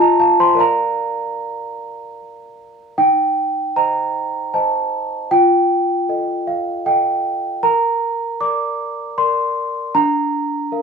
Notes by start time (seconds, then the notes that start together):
Already playing: F4
0.00 D#5 A#5
0.20 F5 A5
0.40 C5 C6
0.55 A#4 D5 F5
0.60 A#5
2.98 D#4 G5
3.76 C5 D#5 A#5
4.54 C5 D#5 A5
5.31 F4 G5
6.09 A4 D#5
6.47 F5
6.86 A4 D#5 G5
7.63 A#4 A#5
8.41 A#4 D5 D6
9.18 A#4 D5 C6
9.95 D4 A#5
10.72 A#4 F5